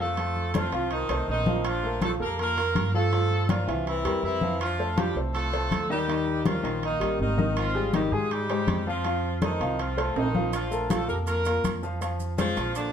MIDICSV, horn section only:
0, 0, Header, 1, 2, 480
1, 0, Start_track
1, 0, Tempo, 370142
1, 228, Time_signature, 4, 2, 24, 8
1, 16761, End_track
2, 0, Start_track
2, 0, Title_t, "Horn section"
2, 0, Program_c, 0, 61
2, 0, Note_on_c, 0, 57, 87
2, 0, Note_on_c, 0, 65, 80
2, 0, Note_on_c, 0, 69, 95
2, 701, Note_off_c, 0, 65, 0
2, 712, Note_off_c, 0, 57, 0
2, 712, Note_off_c, 0, 69, 0
2, 714, Note_on_c, 0, 60, 73
2, 717, Note_on_c, 0, 53, 78
2, 717, Note_on_c, 0, 65, 85
2, 1155, Note_off_c, 0, 60, 0
2, 1157, Note_off_c, 0, 53, 0
2, 1157, Note_off_c, 0, 65, 0
2, 1186, Note_on_c, 0, 51, 83
2, 1186, Note_on_c, 0, 60, 72
2, 1186, Note_on_c, 0, 63, 90
2, 1630, Note_off_c, 0, 60, 0
2, 1631, Note_off_c, 0, 51, 0
2, 1631, Note_off_c, 0, 63, 0
2, 1670, Note_on_c, 0, 51, 87
2, 1670, Note_on_c, 0, 63, 94
2, 1673, Note_on_c, 0, 60, 70
2, 2112, Note_off_c, 0, 51, 0
2, 2112, Note_off_c, 0, 63, 0
2, 2114, Note_off_c, 0, 60, 0
2, 2145, Note_on_c, 0, 53, 90
2, 2145, Note_on_c, 0, 65, 97
2, 2152, Note_on_c, 0, 62, 81
2, 2622, Note_off_c, 0, 53, 0
2, 2622, Note_off_c, 0, 65, 0
2, 2626, Note_off_c, 0, 62, 0
2, 2639, Note_on_c, 0, 57, 80
2, 2639, Note_on_c, 0, 65, 73
2, 2639, Note_on_c, 0, 69, 87
2, 2742, Note_off_c, 0, 57, 0
2, 2742, Note_off_c, 0, 69, 0
2, 2743, Note_off_c, 0, 65, 0
2, 2880, Note_on_c, 0, 58, 88
2, 2880, Note_on_c, 0, 67, 68
2, 2880, Note_on_c, 0, 70, 95
2, 3093, Note_off_c, 0, 58, 0
2, 3093, Note_off_c, 0, 67, 0
2, 3093, Note_off_c, 0, 70, 0
2, 3112, Note_on_c, 0, 58, 92
2, 3112, Note_on_c, 0, 70, 100
2, 3116, Note_on_c, 0, 65, 80
2, 3774, Note_off_c, 0, 58, 0
2, 3774, Note_off_c, 0, 70, 0
2, 3776, Note_off_c, 0, 65, 0
2, 3821, Note_on_c, 0, 57, 92
2, 3821, Note_on_c, 0, 69, 100
2, 3827, Note_on_c, 0, 65, 75
2, 4525, Note_off_c, 0, 65, 0
2, 4537, Note_off_c, 0, 57, 0
2, 4537, Note_off_c, 0, 69, 0
2, 4541, Note_on_c, 0, 53, 74
2, 4541, Note_on_c, 0, 65, 81
2, 4549, Note_on_c, 0, 62, 68
2, 4984, Note_off_c, 0, 53, 0
2, 4984, Note_off_c, 0, 65, 0
2, 4988, Note_off_c, 0, 62, 0
2, 5026, Note_on_c, 0, 52, 82
2, 5026, Note_on_c, 0, 64, 89
2, 5030, Note_on_c, 0, 60, 75
2, 5466, Note_off_c, 0, 52, 0
2, 5466, Note_off_c, 0, 64, 0
2, 5468, Note_off_c, 0, 60, 0
2, 5504, Note_on_c, 0, 52, 86
2, 5504, Note_on_c, 0, 64, 94
2, 5514, Note_on_c, 0, 60, 69
2, 5945, Note_off_c, 0, 52, 0
2, 5945, Note_off_c, 0, 64, 0
2, 5950, Note_off_c, 0, 60, 0
2, 5982, Note_on_c, 0, 53, 85
2, 5982, Note_on_c, 0, 65, 93
2, 5984, Note_on_c, 0, 62, 72
2, 6424, Note_off_c, 0, 53, 0
2, 6424, Note_off_c, 0, 65, 0
2, 6425, Note_off_c, 0, 62, 0
2, 6459, Note_on_c, 0, 55, 82
2, 6459, Note_on_c, 0, 67, 89
2, 6469, Note_on_c, 0, 62, 69
2, 6695, Note_off_c, 0, 55, 0
2, 6695, Note_off_c, 0, 67, 0
2, 6701, Note_off_c, 0, 62, 0
2, 6941, Note_on_c, 0, 57, 86
2, 6941, Note_on_c, 0, 69, 93
2, 6951, Note_on_c, 0, 65, 80
2, 7606, Note_off_c, 0, 57, 0
2, 7606, Note_off_c, 0, 69, 0
2, 7612, Note_off_c, 0, 65, 0
2, 7667, Note_on_c, 0, 55, 80
2, 7667, Note_on_c, 0, 67, 86
2, 7674, Note_on_c, 0, 63, 73
2, 8329, Note_off_c, 0, 55, 0
2, 8329, Note_off_c, 0, 67, 0
2, 8333, Note_off_c, 0, 63, 0
2, 8378, Note_on_c, 0, 53, 78
2, 8378, Note_on_c, 0, 65, 85
2, 8387, Note_on_c, 0, 61, 65
2, 8821, Note_off_c, 0, 53, 0
2, 8821, Note_off_c, 0, 65, 0
2, 8827, Note_off_c, 0, 61, 0
2, 8870, Note_on_c, 0, 51, 85
2, 8870, Note_on_c, 0, 63, 92
2, 8876, Note_on_c, 0, 58, 70
2, 9308, Note_off_c, 0, 51, 0
2, 9308, Note_off_c, 0, 63, 0
2, 9312, Note_off_c, 0, 58, 0
2, 9354, Note_on_c, 0, 51, 82
2, 9354, Note_on_c, 0, 63, 89
2, 9357, Note_on_c, 0, 58, 63
2, 9790, Note_off_c, 0, 51, 0
2, 9790, Note_off_c, 0, 63, 0
2, 9792, Note_off_c, 0, 58, 0
2, 9826, Note_on_c, 0, 53, 88
2, 9826, Note_on_c, 0, 65, 96
2, 9838, Note_on_c, 0, 60, 70
2, 10266, Note_off_c, 0, 53, 0
2, 10266, Note_off_c, 0, 65, 0
2, 10273, Note_off_c, 0, 60, 0
2, 10304, Note_on_c, 0, 55, 78
2, 10304, Note_on_c, 0, 67, 84
2, 10312, Note_on_c, 0, 63, 68
2, 10522, Note_off_c, 0, 55, 0
2, 10522, Note_off_c, 0, 67, 0
2, 10527, Note_off_c, 0, 63, 0
2, 10538, Note_on_c, 0, 56, 78
2, 10538, Note_on_c, 0, 68, 84
2, 10551, Note_on_c, 0, 65, 71
2, 10776, Note_off_c, 0, 56, 0
2, 10776, Note_off_c, 0, 68, 0
2, 10777, Note_on_c, 0, 55, 88
2, 10777, Note_on_c, 0, 67, 96
2, 10783, Note_off_c, 0, 65, 0
2, 10785, Note_on_c, 0, 63, 73
2, 11497, Note_off_c, 0, 55, 0
2, 11497, Note_off_c, 0, 67, 0
2, 11500, Note_off_c, 0, 63, 0
2, 11510, Note_on_c, 0, 53, 74
2, 11510, Note_on_c, 0, 65, 80
2, 11520, Note_on_c, 0, 60, 71
2, 12174, Note_off_c, 0, 53, 0
2, 12174, Note_off_c, 0, 65, 0
2, 12179, Note_off_c, 0, 60, 0
2, 12228, Note_on_c, 0, 51, 75
2, 12228, Note_on_c, 0, 63, 81
2, 12236, Note_on_c, 0, 60, 65
2, 12670, Note_off_c, 0, 51, 0
2, 12670, Note_off_c, 0, 63, 0
2, 12674, Note_off_c, 0, 60, 0
2, 12710, Note_on_c, 0, 53, 79
2, 12710, Note_on_c, 0, 65, 86
2, 12715, Note_on_c, 0, 60, 68
2, 13184, Note_off_c, 0, 53, 0
2, 13184, Note_off_c, 0, 65, 0
2, 13187, Note_off_c, 0, 60, 0
2, 13190, Note_on_c, 0, 51, 75
2, 13190, Note_on_c, 0, 63, 82
2, 13203, Note_on_c, 0, 60, 59
2, 13631, Note_off_c, 0, 51, 0
2, 13631, Note_off_c, 0, 63, 0
2, 13639, Note_off_c, 0, 60, 0
2, 13676, Note_on_c, 0, 53, 78
2, 13676, Note_on_c, 0, 65, 85
2, 13683, Note_on_c, 0, 62, 71
2, 14115, Note_off_c, 0, 53, 0
2, 14115, Note_off_c, 0, 65, 0
2, 14119, Note_off_c, 0, 62, 0
2, 14147, Note_on_c, 0, 57, 76
2, 14147, Note_on_c, 0, 69, 83
2, 14151, Note_on_c, 0, 65, 72
2, 14378, Note_on_c, 0, 58, 70
2, 14378, Note_on_c, 0, 70, 76
2, 14384, Note_off_c, 0, 57, 0
2, 14384, Note_off_c, 0, 69, 0
2, 14386, Note_off_c, 0, 65, 0
2, 14390, Note_on_c, 0, 67, 65
2, 14487, Note_off_c, 0, 58, 0
2, 14487, Note_off_c, 0, 70, 0
2, 14496, Note_off_c, 0, 67, 0
2, 14622, Note_on_c, 0, 58, 79
2, 14622, Note_on_c, 0, 70, 86
2, 14633, Note_on_c, 0, 65, 69
2, 15292, Note_off_c, 0, 58, 0
2, 15292, Note_off_c, 0, 70, 0
2, 15298, Note_off_c, 0, 65, 0
2, 16064, Note_on_c, 0, 53, 89
2, 16064, Note_on_c, 0, 65, 97
2, 16071, Note_on_c, 0, 60, 69
2, 16511, Note_off_c, 0, 53, 0
2, 16511, Note_off_c, 0, 65, 0
2, 16515, Note_off_c, 0, 60, 0
2, 16546, Note_on_c, 0, 50, 81
2, 16546, Note_on_c, 0, 62, 88
2, 16554, Note_on_c, 0, 58, 75
2, 16761, Note_off_c, 0, 50, 0
2, 16761, Note_off_c, 0, 58, 0
2, 16761, Note_off_c, 0, 62, 0
2, 16761, End_track
0, 0, End_of_file